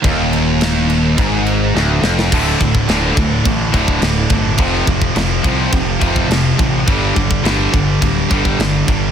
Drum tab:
CC |x-x-x-x-x-x-----|x-x-x-x-x-x-x-x-|x-x-x-x-x-x-x-x-|x-x-x-x-x-x-x-x-|
SD |----o-------o-oo|----o-------o---|----o-------o---|----o-------o---|
BD |o-------o-------|o-oo--o-o-oo--o-|o-oo--o-o-oo--o-|o-oo--o-o-oo--o-|